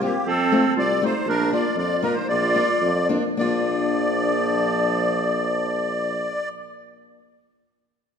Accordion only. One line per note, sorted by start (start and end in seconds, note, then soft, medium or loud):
0.03 0.27 G4 medium
0.28 0.73 A4 loud
0.79 1.04 D5 loud
1.05 1.28 C5 medium
1.29 1.52 A#4 loud
1.53 1.76 D5 medium
1.78 2.02 D5 medium
2.03 2.16 A#4 medium
2.14 2.27 C5 medium
2.28 3.07 D5 loud
3.39 6.49 D5 medium